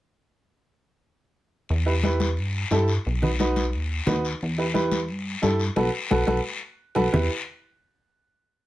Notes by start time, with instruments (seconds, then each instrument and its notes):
1.69 analog synth bass E2, long guiro
1.86 upright piano E4 G4 B4
2.03 upright piano E4 G4 B4, high conga, short guiro
2.20 high conga, short guiro
2.37 analog synth bass G2, long guiro
2.71 analog synth bass G2, upright piano E4 G4 A4, high conga, short guiro
2.88 short guiro
3.05 analog synth bass B1, long guiro
3.21 upright piano D#4 F#4 B4, low conga
3.39 upright piano D#4 F#4 B4, high conga, short guiro
3.56 high conga, short guiro
3.73 analog synth bass D#2, long guiro
4.06 analog synth bass D#2, upright piano D#4 F#4 B4, high conga, low conga, short guiro
4.25 short guiro
4.41 analog synth bass E2, long guiro
4.58 upright piano E4 G4 B4
4.74 upright piano E4 G4 B4, high conga, short guiro
4.91 high conga, short guiro
5.08 analog synth bass G2, long guiro
5.42 analog synth bass G2, upright piano E4 G4 A4, high conga, short guiro
5.59 short guiro
5.76 analog synth bass B1, upright piano F#4 A4 B4, high conga, long guiro
6.10 analog synth bass B1, upright piano F#4 A4 B4, high conga, long guiro
6.27 analog synth bass B1, upright piano F#4 A4 B4, high conga, long guiro
6.95 analog synth bass B1, upright piano F#4 A4 B4, high conga, long guiro
7.12 analog synth bass E2, upright piano E4 G4 B4, low conga, long guiro